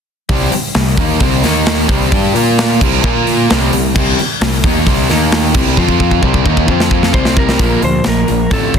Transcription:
0.29 0.51 C2 medium
0.29 0.51 C3 loud
0.29 0.52 G3 loud
0.29 0.52 C4 loud
0.29 kick loud
0.29 open hi-hat medium
0.52 muted picked electric bass stroke soft
0.52 muted distorted electric guitar stroke medium
0.52 muted overdriven electric guitar stroke medium
0.52 open hi-hat medium
0.75 0.96 C2 medium
0.75 0.94 C3 medium
0.75 0.94 G3 medium
0.75 snare loud
0.75 open hi-hat medium
0.97 1.19 D#2 medium
0.97 1.20 D#3 medium
0.97 1.21 A#3 medium
0.97 1.21 D#4 loud
0.97 kick loud
1.20 1.42 C2 medium
1.20 1.43 C3 medium
1.20 1.43 G3 medium
1.20 1.43 C4 loud
1.20 kick medium
1.20 open hi-hat medium
1.43 1.86 D#2 medium
1.43 1.88 D#3 loud
1.43 1.89 A#3 medium
1.43 1.89 D#4 loud
1.43 snare soft
1.43 open hi-hat medium
1.66 snare loud
1.66 open hi-hat medium
1.88 2.11 C2 medium
1.88 2.11 C3 medium
1.88 2.10 G3 medium
1.88 2.11 C4 medium
1.88 kick loud
1.88 open hi-hat medium
2.11 2.33 G2 medium
2.11 2.33 G3 medium
2.11 2.34 D4 medium
2.11 2.34 G4 loud
2.11 kick loud
2.11 open hi-hat medium
2.33 2.77 A#2 loud
2.33 2.79 A#3 medium
2.33 2.80 F4 medium
2.33 2.80 A#4 loud
2.33 open hi-hat medium
2.59 snare loud
2.59 open hi-hat medium
2.80 3.02 C2 loud
2.80 3.03 C3 medium
2.80 3.03 G3 loud
2.80 3.03 C4 loud
2.80 kick loud
2.80 crash medium
3.04 3.46 A#2 medium
3.04 3.49 A#3 medium
3.04 3.49 F4 medium
3.04 3.49 A#4 loud
3.04 kick loud
3.27 open hi-hat medium
3.50 3.71 C2 medium
3.50 3.71 C3 medium
3.50 3.72 G3 loud
3.50 3.72 C4 medium
3.50 snare loud
3.50 open hi-hat medium
3.72 3.94 C2 medium
3.72 3.90 C3 medium
3.72 3.91 G3 medium
3.72 open hi-hat medium
3.95 4.17 C2 loud
3.95 4.17 C3 loud
3.95 4.17 G3 loud
3.95 4.17 C4 loud
3.95 kick loud
3.95 crash loud
4.19 muted picked electric bass stroke soft
4.19 muted overdriven electric guitar stroke medium
4.19 muted distorted electric guitar stroke medium
4.19 open hi-hat medium
4.41 4.62 C2 medium
4.41 4.59 C3 medium
4.41 4.60 G3 medium
4.41 snare loud
4.41 open hi-hat medium
4.64 4.85 D#2 medium
4.64 4.86 D#3 medium
4.64 4.86 A#3 medium
4.64 4.87 D#4 loud
4.64 kick loud
4.64 open hi-hat medium
4.87 5.08 C2 medium
4.87 5.09 C3 medium
4.87 5.09 G3 medium
4.87 5.09 C4 loud
4.87 kick medium
4.87 open hi-hat medium
5.09 5.52 D#2 loud
5.09 5.54 D#3 medium
5.09 5.55 A#3 loud
5.09 5.55 D#4 loud
5.09 snare soft
5.09 open hi-hat medium
5.32 snare loud
5.54 5.76 C2 medium
5.54 5.77 C3 medium
5.54 5.77 G3 loud
5.54 5.77 C4 loud
5.54 kick loud
5.54 crash loud
5.77 6.20 F2 medium
5.77 6.21 F3 loud
5.77 6.22 C4 loud
5.77 6.22 F4 loud
5.77 kick medium
5.88 kick medium
6.00 kick medium
6.11 kick medium
6.22 6.44 C2 medium
6.22 6.44 C3 medium
6.22 6.45 G3 medium
6.22 6.45 C4 medium
6.22 kick medium
6.34 kick medium
6.45 6.67 D#2 medium
6.45 6.67 D#3 medium
6.45 6.67 A#3 medium
6.45 6.69 D#4 loud
6.45 kick medium
6.57 kick medium
6.67 7.11 F2 medium
6.67 7.11 F3 medium
6.67 7.12 C4 medium
6.67 7.13 F4 medium
6.67 kick medium
6.80 snare medium
6.91 kick medium
7.03 snare medium
7.12 7.57 C2 medium
7.12 7.58 C3 medium
7.12 7.59 G3 medium
7.12 7.59 C4 loud
7.12 7.38 C5 medium
7.12 kick medium
7.25 snare medium
7.37 7.80 A#4 medium
7.37 kick loud
7.49 snare medium
7.58 7.76 A#1 medium
7.58 7.81 A#2 medium
7.58 7.81 F3 loud
7.58 7.81 A#3 medium
7.58 kick loud
7.58 open hi-hat medium
7.82 7.99 D2 medium
7.82 8.03 A#2 medium
7.82 8.03 F3 medium
7.82 8.07 C5 medium
7.82 open hi-hat soft
8.04 8.23 A#1 medium
8.04 8.26 A#2 medium
8.04 8.26 F3 medium
8.04 snare loud
8.04 open hi-hat medium
8.08 8.53 A#4 medium
8.27 8.46 A#1 medium
8.27 8.49 A#2 medium
8.27 8.49 F3 medium
8.27 open hi-hat soft
8.50 8.68 A1 medium
8.50 8.72 F2 medium
8.50 8.73 C3 medium
8.50 8.73 F3 medium
8.50 8.76 A4 medium
8.50 kick loud
8.50 open hi-hat medium
8.74 8.79 A1 medium
8.74 8.79 F2 medium
8.74 8.79 C3 medium
8.74 kick medium
8.74 open hi-hat medium

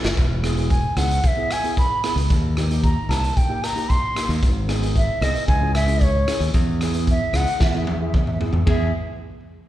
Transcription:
0.00 0.17 C#4 medium
0.00 0.18 E4 medium
0.00 0.18 A4 loud
0.00 0.14 E5 medium
0.04 0.15 F#1 medium
0.04 snare loud
0.17 0.83 E1 loud
0.17 kick loud
0.17 closed hi-hat medium
0.43 0.52 B3 medium
0.43 0.52 E4 medium
0.43 0.52 G#4 medium
0.43 cross-stick medium
0.43 closed hi-hat medium
0.57 0.81 B3 medium
0.57 0.81 E4 medium
0.57 0.81 G#4 medium
0.57 closed hi-hat medium
0.69 0.98 G#5 medium
0.69 kick medium
0.69 closed hi-hat medium
0.97 1.19 C#2 medium
0.97 1.21 B3 medium
0.97 1.21 E4 medium
0.97 1.22 G#4 medium
0.97 1.28 F#5 medium
0.97 cross-stick medium
0.97 closed hi-hat medium
1.11 closed hi-hat medium
1.23 1.54 E5 loud
1.23 kick loud
1.23 closed hi-hat medium
1.37 1.53 B3 medium
1.37 1.53 E4 medium
1.37 1.53 G#4 medium
1.51 1.78 G#5 loud
1.51 cross-stick medium
1.51 closed hi-hat medium
1.64 1.88 B3 medium
1.64 1.88 E4 medium
1.64 1.88 G#4 medium
1.64 closed hi-hat medium
1.77 2.15 B5 loud
1.77 kick medium
1.77 closed hi-hat medium
2.04 2.30 B3 medium
2.04 2.30 E4 medium
2.04 2.31 G#4 medium
2.04 cross-stick medium
2.04 closed hi-hat medium
2.16 2.27 C#2 medium
2.16 closed hi-hat medium
2.30 2.95 D#2 loud
2.30 kick loud
2.30 closed hi-hat medium
2.57 2.65 A#3 medium
2.57 2.65 D#4 medium
2.57 2.65 G4 medium
2.57 cross-stick medium
2.57 closed hi-hat medium
2.70 2.94 A#3 medium
2.70 2.94 D#4 medium
2.70 2.94 G4 medium
2.70 closed hi-hat medium
2.83 3.11 A#5 medium
2.83 kick medium
2.83 closed hi-hat medium
3.09 3.31 C2 medium
3.09 3.33 A#3 medium
3.09 3.34 D#4 medium
3.09 3.34 G4 medium
3.09 3.38 A5 loud
3.09 cross-stick medium
3.09 closed hi-hat medium
3.24 closed hi-hat medium
3.37 3.65 G5 medium
3.37 kick loud
3.37 closed hi-hat medium
3.48 3.65 A#3 medium
3.48 3.65 D#4 medium
3.48 3.65 G4 medium
3.64 3.91 A#5 medium
3.64 cross-stick medium
3.64 closed hi-hat medium
3.76 4.00 A#3 medium
3.76 4.00 D#4 medium
3.76 4.00 G4 medium
3.76 closed hi-hat medium
3.89 4.29 C6 loud
3.89 kick medium
3.89 closed hi-hat medium
4.15 4.42 A#3 medium
4.15 4.42 D#4 medium
4.15 4.43 G4 medium
4.15 cross-stick medium
4.15 closed hi-hat medium
4.29 4.40 D#2 loud
4.29 closed hi-hat medium
4.43 5.08 G#1 loud
4.43 kick loud
4.43 closed hi-hat medium
4.68 4.76 B3 medium
4.68 4.77 D#4 medium
4.68 4.77 G#4 loud
4.68 cross-stick medium
4.68 closed hi-hat medium
4.81 5.06 B3 medium
4.81 5.06 D#4 medium
4.81 5.06 G#4 medium
4.81 closed hi-hat medium
4.96 5.24 E5 loud
4.96 kick medium
4.96 closed hi-hat medium
5.21 5.32 C2 loud
5.21 5.45 B3 medium
5.21 5.46 D#4 medium
5.21 5.46 G#4 medium
5.21 5.47 D#5 loud
5.21 cross-stick medium
5.21 closed hi-hat medium
5.35 closed hi-hat medium
5.47 6.24 C#2 loud
5.47 5.72 G#5 loud
5.47 kick loud
5.47 closed hi-hat medium
5.61 5.77 C#4 medium
5.61 5.77 E4 medium
5.61 5.78 G#4 medium
5.75 6.05 E5 loud
5.75 cross-stick medium
5.75 closed hi-hat medium
5.87 6.11 C#4 medium
5.87 6.12 E4 medium
5.87 6.12 G#4 medium
5.87 closed hi-hat medium
6.01 6.42 C#5 medium
6.01 kick medium
6.01 closed hi-hat medium
6.27 6.54 C#4 medium
6.27 6.54 E4 medium
6.27 6.55 G#4 medium
6.27 cross-stick medium
6.27 closed hi-hat loud
6.40 6.51 D#2 loud
6.40 closed hi-hat medium
6.54 7.19 E2 loud
6.54 kick loud
6.54 closed hi-hat medium
6.81 6.89 B3 medium
6.81 6.89 E4 medium
6.81 6.90 G#4 medium
6.81 cross-stick medium
6.81 closed hi-hat medium
6.94 7.18 B3 medium
6.94 7.19 E4 medium
6.94 7.19 G#4 medium
6.94 closed hi-hat medium
7.07 7.38 E5 loud
7.07 kick medium
7.07 closed hi-hat medium
7.33 7.44 C#2 medium
7.33 7.58 B3 medium
7.33 7.58 E4 medium
7.33 7.58 G#4 medium
7.33 7.62 F#5 loud
7.33 cross-stick medium
7.33 closed hi-hat medium
7.47 closed hi-hat medium
7.60 8.37 E2 loud
7.60 7.69 E5 medium
7.60 kick loud
7.60 snare medium
7.70 7.76 E5 medium
7.74 7.90 B3 medium
7.74 7.90 E4 medium
7.74 7.90 G#4 medium
7.74 7.83 E5 medium
7.86 7.91 E5 medium
7.86 high tom medium
7.93 7.99 E5 medium
8.01 8.24 B3 medium
8.01 8.25 E4 medium
8.01 8.25 G#4 medium
8.01 8.07 E5 medium
8.09 8.14 E5 medium
8.14 8.22 E5 medium
8.14 kick medium
8.14 mid tom medium
8.27 8.31 E5 medium
8.27 mid tom medium
8.33 8.38 E5 medium
8.40 8.65 B3 medium
8.40 8.65 E4 medium
8.40 8.65 G#4 medium
8.40 floor tom loud
8.53 8.64 E2 loud
8.53 floor tom medium
8.66 8.91 E2 loud
8.66 8.91 B3 medium
8.66 8.91 E4 medium
8.66 8.91 G#4 loud
8.66 8.91 G#4 medium
8.66 8.92 E5 medium
8.66 kick medium
8.66 floor tom loud
8.66 ride bell medium

